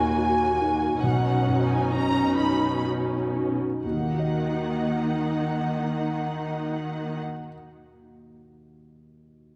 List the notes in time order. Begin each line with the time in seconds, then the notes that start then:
Already playing: D#2 A#2 A#3 D#4 F#4 G#5
0.17 F#4
0.61 D#4
1.02 B1 B2 C#4 D#4 F#5
1.47 F#2
1.70 G#5
1.91 C#4 A#5
2.37 D#4 B5
2.85 F#4
3.35 D#4
3.84 D#2 D#3 A#3 D#4 F#5
3.91 D#3
3.98 A#3
4.05 D#4
4.12 F#4
4.19 D#5